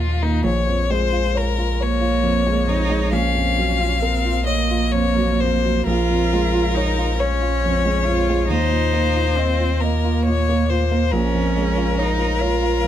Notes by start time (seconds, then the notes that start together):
Already playing: D#2 A#2 A#3 F4 D#5
0.00 F3
0.20 D#3 A#3 D#4
0.44 A#1 G#3 F4 A#4 C#5
0.67 F2
0.90 G#3 C5
1.12 F4
1.35 A#4 C#5
1.58 F4
1.80 A#3 C#5
2.01 F4
2.23 F2
2.47 G#3
2.68 F2 D#4
2.90 G#3
3.12 A#1 A#3 C#4 F5
3.35 F2
3.58 F#3
3.80 F4
4.02 C4 A#4
4.25 F4
4.45 A#3 C#5 D#5
4.71 F4
4.92 F2 C#5
5.16 F#3
5.40 F2 C5
5.64 F#3
5.85 A#1 G#3 F4 A#4 C#5
6.10 F2
6.33 G#3
6.55 F4
6.75 D#4 C#5
6.98 F4
7.18 C#4 C#5
7.41 F4
7.65 F2
7.85 G#3
8.05 F2 F4
8.30 G#3
8.48 D#2 D#4 C5
8.52 A#3 D#5
8.71 A#2
8.93 A#3
9.15 F4
9.37 C4 D#5
9.60 F4
9.80 A#3 A#4 D#5
10.04 F4
10.25 A#2 C#5
10.49 A#3
10.70 A#2 C5
10.92 A#3
11.10 A#1 G#3 C#4 A#4 C#5 F5
11.34 F2
11.56 G#3
11.77 F4
11.98 D#4 C#5
12.19 F4
12.41 F4 C#5
12.62 F4
12.84 F2